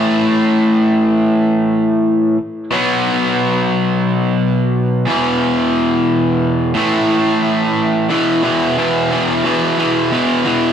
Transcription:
\new Staff \with { instrumentName = "Overdriven electric guitar" } { \clef bass \time 4/4 \key e \mixolydian \tempo 4 = 89 <a, e a>2.~ <a, e a>8 r8 | <b, fis b>2.~ <b, fis b>8 <e, b, e>8~ | <e, b, e>2 <a, e a>2 | <e, b, e>8 <e, b, e>8 <e, b, e>8 <e, b, e>8 <e, b, e>8 <e, b, e>8 <e, b, e>8 <e, b, e>8 | }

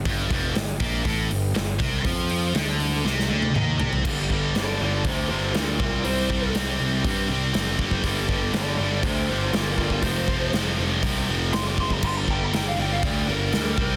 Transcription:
<<
  \new Staff \with { instrumentName = "Lead electric guitar" } { \time 4/4 \key g \minor \tempo 4 = 120 r1 | r1 | r4 <a' d''>8 <a' d''>8 <g' c''>8 <g' c''>8 <f' bes'>8 <f' bes'>8 | c''4 r2. |
r4 <a' d''>8 <a' d''>8 <g' c''>8 <g' c''>8 <f' bes'>8 <f' bes'>8 | c''4 r2 c'''16 d'''16 c'''16 bes''16 | c'''16 bes''16 g''16 bes''16 g''16 f''16 g''16 f''16 d''8 bes'4. | }
  \new Staff \with { instrumentName = "Distorted electric guitar" } { \clef bass \time 4/4 \key g \minor g,8 f,8 g,8 bes,8 a,8 g,8 g,8 c8 | f4 d4 c8 d8 ees8 c8 | <g, d g>8 <g, d g>8 <g, d g>8 <g, d g>8 <g, d g>8 <g, d g>8 <g, d g>8 <c g c'>8 | <c g c'>8 <c g c'>8 <c g c'>8 <c g c'>8 <c g c'>8 <c g c'>8 <c g c'>8 <c g c'>8 |
<g, d g>8 <g, d g>8 <g, d g>8 <g, d g>8 <g, d g>8 <g, d g>8 <g, d g>8 <g, d g>8 | <f, c f>8 <f, c f>8 <f, c f>8 <f, c f>8 <f, c f>8 <f, c f>8 <f, c f>8 <f, c f>8 | <g, d g>8 <g, d g>8 <g, d g>8 <g, d g>8 <g, d g>8 <g, d g>8 <g, d g>8 <c g c'>8 | }
  \new Staff \with { instrumentName = "Picked electric bass" } { \clef bass \time 4/4 \key g \minor g,,8 f,,8 g,,8 bes,,8 a,,8 g,,8 g,,8 c,8 | f,4 d,4 c,8 d,8 ees,8 c,8 | g,,4 g,,8 g,,8 d,8 g,,8 d,8 c,8 | c,4 c,8 c,8 g,8 c,8 fis,,4 |
g,,4 g,,8 g,,8 d,8 g,,8 g,,4 | f,,4 f,,8 f,,8 c,8 f,,8 fis,,4 | g,,4 g,,8 g,,8 d,8 g,,8 d,8 c,8 | }
  \new DrumStaff \with { instrumentName = "Drums" } \drummode { \time 4/4 <hho bd>8 <hho bd>8 <hho sn>8 <hho bd>8 <hho bd>8 hho8 <hho sn>8 <hho bd>8 | <hho bd>8 hho8 <hho sn>8 hho8 sn16 sn8 tommh16 toml8 tomfh16 tomfh16 | <cymc bd>8 bd8 <hho sn>4 <hho bd>4 <hho sn>8 bd8 | hho8 bd8 <hho sn>4 <hho bd>4 <hho sn>8 bd16 bd16 |
<hho bd>8 bd8 <hho sn>4 <hho bd>4 <hho sn>8 bd16 bd16 | <hho bd>8 bd8 <hho sn>4 <hho bd>4 <hho sn>8 bd16 bd16 | <cymc bd>8 bd8 <hho sn>4 <hho bd>4 <hho sn>8 bd8 | }
>>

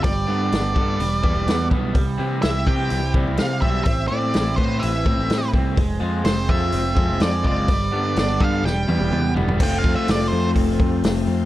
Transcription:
<<
  \new Staff \with { instrumentName = "Lead electric guitar" } { \time 4/4 \key f \lydian \tempo 4 = 126 d''2.~ d''8 r8 | r4 e''8 g''4 r8 f''8 e''8 | e''8 d''4 c''8 e''4. r8 | r4 c''8 e''4. d''8 d''8~ |
d''4 d''8 f''8 g''4. r8 | \tuplet 3/2 { g''8 f''8 e''8 d''8 c''8. r16 } r2 | }
  \new Staff \with { instrumentName = "Tonewheel organ" } { \time 4/4 \key f \lydian r1 | r1 | r1 | r1 |
r1 | <a' c'' f'' c'''>1 | }
  \new Staff \with { instrumentName = "Overdriven electric guitar" } { \time 4/4 \key f \lydian g8 b8 d'8 a'8 g8 g8 b8 g8 | g8 c'8 e'8 g'8 e'8 g8 c'8 g8 | c'8 c'8 e'8 b'8 e'8 c'8 c'8 c'8 | aes8 aes8 c'8 f'8 c'8 aes8 aes8 aes8 |
g8 b8 d'8 a'8 g8 g8 b8 g8 | <a c' f'>1 | }
  \new Staff \with { instrumentName = "Overdriven electric guitar" } { \time 4/4 \key f \lydian r8 <d g b d'>8 r8 <d g b d'>8 r8 <e g b e'>8 r8 <e g b e'>8 | r8 <e g c' e'>8 r8 <e g c' e'>8 r8 <e g c' e'>8 r8 <e g c' e'>8 | r8 <e a c' e'>8 r8 <e a c' e'>8 r8 <e a c' e'>8 r8 <e a c' e'>8 | r8 <f aes c' f'>8 r8 <f aes c' f'>8 r8 <f aes c' f'>8 r8 <f aes c' f'>8 |
r8 <d g b d'>8 r8 <d g b d'>8 r8 <e g b e'>8 r8 <e g b e'>8 | <f a c' f'>1 | }
  \new Staff \with { instrumentName = "Picked electric bass" } { \clef bass \time 4/4 \key f \lydian g,,8 g,8 g,,8 g,8 e,,8 e,16 e,,16 e,8 b,,8 | c,8 c8 c,8 c8 c,8 c16 c,16 c8 b,,8 | a,,8 a,8 a,,8 a,8 a,,8 a,16 a,,16 a,8 c,8 | f,,8 f,8 f,,8 f,8 f,,8 f,16 f,,16 f,8 fis,,8 |
g,,8 g,8 g,,8 g,8 e,,8 e,16 e,,16 e,8 e,,8 | f,,8 f,16 r16 f,,8 f,8 f,,8 f,8 f,,8 f,8 | }
  \new DrumStaff \with { instrumentName = "Drums" } \drummode { \time 4/4 <hho bd>4 <hho sn>8 bd8 hho8 bd8 <hho sn>8 bd8 | <hho bd>4 <hho sn>8 bd8 hho8 bd8 <hho sn>8 bd8 | <hho bd>4 <hho sn>8 bd8 hho8 bd8 <hho sn>8 bd8 | <hho bd>4 <hho sn>8 bd8 hho8 bd8 <hho sn>8 bd8 |
<hho bd>4 <hho sn>8 bd8 sn8 tommh16 tommh16 toml8 tomfh16 tomfh16 | <cymc bd>8 bd8 <hho sn>4 <hho bd>8 bd8 <hho sn>4 | }
>>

